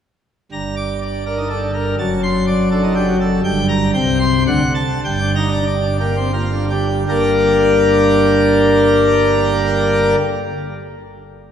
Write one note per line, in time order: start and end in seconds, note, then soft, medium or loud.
0.52 1.95 G1 medium
0.52 1.95 G2 medium
0.52 0.74 A#5 medium
0.77 0.99 D6 medium
1.02 1.24 D5 medium
1.26 1.37 D4 medium
1.26 1.48 A#4 medium
1.37 1.48 D#4 soft
1.49 1.61 D4 medium
1.49 1.71 A4 medium
1.62 1.73 D3 medium
1.74 1.95 A#4 medium
1.98 3.40 F#1 medium
1.98 3.40 F#2 medium
1.98 2.21 A5 medium
2.23 2.45 C6 loud
2.47 2.69 D5 medium
2.71 2.82 D4 medium
2.71 2.93 A4 medium
2.83 2.94 D#4 medium
2.95 3.06 D4 medium
2.95 3.16 G4 medium
3.07 3.18 F#3 medium
3.21 3.41 A4 medium
3.44 3.93 G1 loud
3.44 3.93 G2 loud
3.44 3.66 G5 medium
3.68 3.90 A#5 loud
3.94 4.46 C2 loud
3.94 4.46 C3 loud
3.94 4.18 G5 loud
4.19 4.43 C6 loud
4.47 4.59 D2 loud
4.47 4.59 D3 loud
4.47 4.73 F#5 medium
4.75 5.00 A5 loud
5.05 7.05 G1 medium
5.05 7.05 G2 medium
5.05 5.32 G5 medium
5.20 5.34 D4 medium
5.35 5.49 D#4 medium
5.35 5.64 A#5 loud
5.51 5.66 D4 medium
5.67 5.97 D5 medium
5.84 5.99 D4 medium
6.00 6.16 A#3 medium
6.00 6.31 G4 medium
6.17 6.32 C4 medium
6.33 6.50 A#3 medium
6.33 6.65 F4 medium
6.52 6.69 D3 medium
6.70 6.88 D4 medium
6.70 7.03 G4 medium
7.09 10.15 G1 medium
7.09 10.15 G2 medium
7.09 10.16 D3 medium
7.09 10.16 A#3 medium
7.09 10.15 D4 medium
7.09 10.15 G4 medium
7.09 10.15 A#4 medium